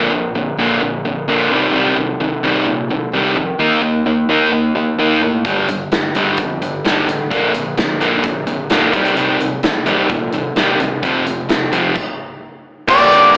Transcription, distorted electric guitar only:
0.00 0.10 A#2 medium
0.00 0.10 D3 medium
0.00 0.11 A#3 medium
0.12 0.33 A#2 medium
0.12 0.33 D3 medium
0.35 0.56 A#2 medium
0.35 0.56 D3 medium
0.59 0.80 A#2 medium
0.59 0.80 D3 medium
0.59 0.81 A#3 medium
0.82 1.02 A#2 medium
0.82 1.03 D3 medium
1.05 1.26 A#2 medium
1.05 1.26 D3 medium
1.28 1.50 A#2 medium
1.28 1.50 D3 medium
1.28 1.50 A#3 medium
1.51 1.73 C3 medium
1.51 1.73 D#3 medium
1.51 1.73 G3 medium
1.74 1.96 C3 medium
1.74 1.96 D#3 medium
1.74 1.97 G3 medium
1.98 2.18 C3 medium
1.98 2.18 D#3 medium
2.20 2.41 C3 medium
2.20 2.41 D#3 medium
2.43 2.65 C3 medium
2.43 2.65 D#3 medium
2.43 2.66 G3 medium
2.67 2.88 C3 medium
2.67 2.88 D#3 medium
2.90 3.11 C3 medium
2.90 3.11 D#3 medium
3.14 3.35 C3 medium
3.14 3.35 D#3 medium
3.14 3.36 G3 medium
3.37 3.57 C3 medium
3.37 3.58 D#3 medium
3.59 3.81 D#3 medium
3.59 3.81 A#3 medium
3.59 3.82 D#4 medium
3.83 4.04 D#3 medium
3.83 4.04 A#3 medium
4.06 4.27 D#3 medium
4.06 4.27 A#3 medium
4.29 4.51 D#3 medium
4.29 4.51 A#3 medium
4.29 4.51 D#4 medium
4.52 4.73 D#3 medium
4.52 4.73 A#3 medium
4.75 4.96 D#3 medium
4.75 4.96 A#3 medium
4.99 5.21 D#3 medium
4.99 5.21 A#3 medium
4.99 5.21 D#4 medium
5.22 5.43 D#3 medium
5.22 5.43 A#3 medium
5.45 5.67 G2 medium
5.45 5.67 D3 medium
5.45 5.67 G3 medium
5.68 5.89 G2 medium
5.68 5.89 D3 medium
5.92 6.13 G2 medium
5.92 6.13 D3 medium
6.15 6.37 G2 medium
6.15 6.37 D3 medium
6.15 6.38 G3 medium
6.39 6.59 G2 medium
6.39 6.60 D3 medium
6.62 6.82 G2 soft
6.62 6.83 D3 medium
6.85 7.06 G2 medium
6.85 7.07 D3 medium
6.85 7.07 G3 medium
7.07 7.29 G2 medium
7.07 7.29 D3 medium
7.30 7.53 A#2 medium
7.30 7.53 D3 medium
7.30 7.53 A#3 medium
7.54 7.75 A#2 medium
7.54 7.75 D3 medium
7.77 7.98 A#2 medium
7.77 7.99 D3 medium
8.01 8.22 A#2 medium
8.01 8.23 D3 medium
8.01 8.23 A#3 medium
8.24 8.45 A#2 medium
8.24 8.45 D3 medium
8.47 8.68 A#2 medium
8.47 8.68 D3 medium
8.70 8.92 A#2 medium
8.70 8.92 D3 medium
8.70 8.93 A#3 medium
8.93 9.15 C3 medium
8.93 9.15 D#3 medium
8.93 9.16 G3 loud
9.16 9.38 C3 medium
9.16 9.39 D#3 medium
9.16 9.39 G3 medium
9.40 9.61 C3 medium
9.40 9.61 D#3 medium
9.63 9.84 C3 medium
9.63 9.84 D#3 medium
9.86 10.08 C3 medium
9.86 10.08 D#3 medium
9.86 10.09 G3 medium
10.10 10.31 C3 medium
10.10 10.31 D#3 medium
10.34 10.54 C3 medium
10.34 10.55 D#3 medium
10.56 10.78 C3 medium
10.56 10.78 D#3 medium
10.56 10.79 G3 medium
10.80 11.01 C3 medium
10.80 11.01 D#3 medium
11.02 11.25 F2 medium
11.02 11.25 C3 medium
11.02 11.25 F3 medium
11.26 11.47 F2 medium
11.26 11.47 C3 medium
11.49 11.70 F2 medium
11.49 11.70 C3 medium
11.72 11.94 F2 medium
11.72 11.94 C3 medium
11.72 11.95 F3 medium
12.88 13.37 G2 loud
12.88 13.37 D3 loud
12.88 13.37 G3 loud
12.88 13.37 A#3 loud
12.88 13.37 D4 medium
12.88 13.37 G4 loud

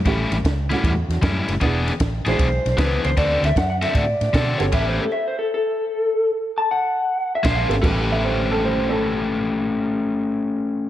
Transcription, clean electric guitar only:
0.00 0.33 C#5 medium
2.28 2.78 C5 medium
2.78 3.02 B4 medium
3.05 3.17 C5 medium
3.18 3.44 D5 loud
3.45 3.57 E5 loud
3.57 3.69 F#5 medium
3.70 3.75 F#5 medium
3.83 3.94 E5 medium
3.94 4.61 D5 medium
4.58 4.88 C#5 medium
4.74 4.86 E5 loud
4.88 5.01 C5 medium
5.01 5.12 A4 medium
5.12 5.24 E5 loud
5.28 5.38 C5 medium
5.39 5.51 A4 medium
5.54 6.28 A4 medium
6.58 6.68 A5 loud
6.71 7.32 F#5 loud
7.35 7.46 E5 medium
7.48 7.72 F5 medium

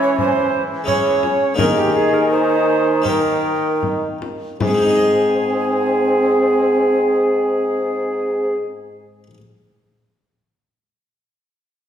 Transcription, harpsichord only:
0.00 1.23 E3 medium
0.00 0.81 G#3 medium
0.00 0.82 C#4 medium
0.00 0.83 G#4 medium
0.84 1.54 G#3 medium
0.84 1.55 C#4 medium
0.84 1.55 G#4 medium
1.54 4.18 D#3 medium
1.54 2.99 A#3 medium
1.54 2.99 D#4 medium
1.54 3.00 G#4 medium
3.02 4.55 A#3 medium
3.02 4.56 D#4 medium
3.02 4.56 G4 medium
4.61 9.23 G#2 medium
4.67 9.27 G#3 medium
4.74 9.30 C4 medium
4.82 9.34 D#4 medium
4.88 9.37 G#4 medium
4.96 9.41 D#5 medium

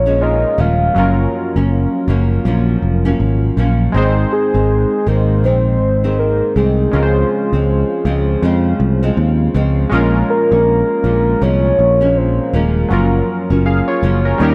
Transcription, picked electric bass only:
0.00 0.44 A#1 medium
0.58 0.88 D#1 medium
0.96 1.26 F#1 loud
1.56 1.86 F#1 medium
2.08 2.38 F#1 medium
2.45 2.75 A#1 medium
2.82 3.12 F1 medium
3.20 3.50 G#1 medium
3.57 3.87 A#1 medium
3.94 4.24 G#1 loud
4.54 4.84 G#1 medium
5.07 5.44 G#1 medium
5.44 5.81 A#1 medium
5.81 6.41 G#1 medium
6.56 6.86 C2 medium
6.93 7.23 C#2 medium
7.53 7.83 C#2 medium
8.05 8.35 C#2 medium
8.42 8.72 F2 medium
8.80 9.10 C2 medium
9.17 9.47 D#2 medium
9.55 9.85 C#2 medium
9.92 10.22 A#1 loud
10.52 10.82 A#1 medium
11.04 11.34 A#1 medium
11.42 11.71 C2 medium
11.79 12.39 A#1 medium
12.54 12.83 D#1 medium
12.91 13.21 F#1 medium
13.50 13.80 F#1 medium
14.03 14.33 F#1 medium
14.40 14.55 D#2 medium

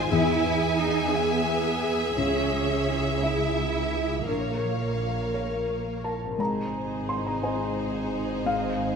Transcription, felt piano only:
0.00 0.14 G#2 medium
0.00 0.14 G#4 soft
0.00 0.14 C5 medium
0.12 2.14 E2 medium
1.15 2.14 G#4 soft
1.15 2.14 E5 soft
2.18 4.24 C#2 soft
3.22 4.24 G#4 soft
3.22 4.24 E5 soft
4.28 6.36 A#1 soft
5.34 6.35 A#4 soft
5.34 6.35 C#5 soft
6.04 6.37 A5 soft
6.38 7.40 G#2 soft
6.38 7.05 A#5 medium
7.09 7.25 C6 medium
7.27 7.42 A#5 medium
7.43 8.42 C4 soft
7.43 8.42 C5 soft
7.43 8.42 D#5 soft
7.43 8.42 G#5 medium
8.46 8.96 G#2 soft
8.46 8.96 F5 medium

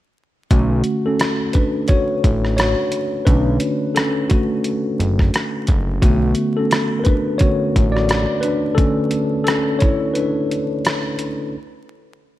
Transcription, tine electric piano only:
0.51 1.50 D3 medium
0.51 1.03 A3 medium
0.51 1.06 C#4 medium
0.51 1.08 F#4 loud
1.06 1.51 C#4 medium
1.06 1.56 A4 medium
1.54 1.71 D4 medium
1.54 1.69 B4 medium
1.89 2.54 F#4 medium
1.89 2.55 C#5 loud
2.57 3.23 F#4 medium
2.57 3.28 C#5 medium
3.25 4.26 D3 medium
3.25 4.26 A3 soft
3.25 3.96 C#4 medium
3.25 3.92 D4 medium
3.25 3.97 B4 medium
3.95 4.28 C#4 medium
3.95 4.31 A4 medium
4.29 5.30 A3 medium
4.29 5.29 F#4 medium
6.02 7.39 D3 medium
6.02 6.54 A3 medium
6.02 8.75 B3 medium
6.02 6.59 F#4 medium
6.56 6.98 C#4 medium
6.56 7.01 A4 medium
6.99 7.05 A#4 medium
7.04 7.38 D4 medium
7.04 7.40 B4 medium
7.38 7.71 D3 soft
7.38 7.71 A3 soft
7.38 7.71 C#4 medium
7.38 7.92 F#4 medium
7.38 7.96 C#5 medium
7.92 8.40 F#4 medium
7.92 8.44 D5 medium
8.41 8.76 D4 medium
8.41 8.74 B4 medium
8.75 9.26 D3 medium
8.75 9.26 A3 soft
8.75 9.43 C#4 medium
8.75 9.41 A4 loud
9.44 9.79 C#4 medium
9.44 9.81 A4 medium
9.79 10.14 E4 medium
9.79 10.12 C#5 medium
10.14 11.16 D4 medium
10.14 11.14 B4 medium

